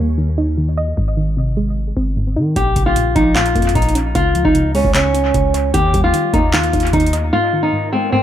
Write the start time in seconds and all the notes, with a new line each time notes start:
Already playing: D#2 D#3 G3
0.00 A#3
0.18 D#3
0.38 D#4
0.58 D#3
0.77 D#5
0.97 G#1 G#2
1.17 D#3
1.37 C3
1.57 G#3
1.97 G1 C4
2.17 G#2
2.36 D#3 D#4
2.56 A#1 A#2 G4, kick, closed hi-hat
2.76 A#1 C#3, kick, closed hi-hat
2.86 F4
2.96 A#2, closed hi-hat
3.16 A#1 F3 D#4, kick, closed hi-hat
3.35 A#2 F4, clap, closed hi-hat
3.46 closed hi-hat
3.55 F2 A#3, kick, closed hi-hat
3.62 closed hi-hat
3.69 closed hi-hat
3.75 A#1 A#2 D#4, kick, closed hi-hat
3.82 closed hi-hat
3.89 closed hi-hat
3.95 C#4, closed hi-hat
4.15 C#2 C#3 F4, kick, closed hi-hat
4.35 F3, closed hi-hat
4.45 C#2 D#4, kick
4.55 C#3, closed hi-hat
4.75 G#3 C#4, open hi-hat
4.85 C#2, kick
4.94 C#3 C#4, clap, closed hi-hat
5.14 C#4, closed hi-hat
5.34 C#2 C#3, kick, closed hi-hat
5.54 C#5, closed hi-hat
5.74 D#2 D#3 G4, kick, closed hi-hat
5.94 D#2 G3, kick, closed hi-hat
6.04 F4
6.14 D#3, closed hi-hat
6.34 D#2 A#3 D#4, kick, closed hi-hat
6.53 D#3 F4, clap, closed hi-hat
6.63 closed hi-hat
6.73 D#2 D#4, kick, closed hi-hat
6.80 closed hi-hat
6.87 closed hi-hat
6.93 D#2 D#3 D#4, kick, closed hi-hat
7.00 closed hi-hat
7.07 closed hi-hat
7.13 D#5, closed hi-hat
7.33 G#2 F4, swell
7.53 D#3
7.63 D#4
7.73 G#2
7.93 G#3 C4
8.12 G#2 C4